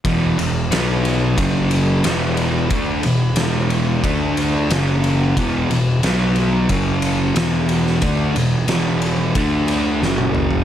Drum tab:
RD |x-x-x-x-x-x-x-x-|x-x-x-x-x-x-x-x-|x-x-x-x-x-x-x-x-|x-x-x-x-x-x-----|
SD |----o-------o---|----o-------o---|----o-------o--o|----o-------o---|
T1 |----------------|----------------|----------------|-------------o--|
T2 |----------------|----------------|----------------|--------------o-|
FT |----------------|----------------|----------------|---------------o|
BD |o-------o-------|o-------o-------|o-------o-------|o-------o-------|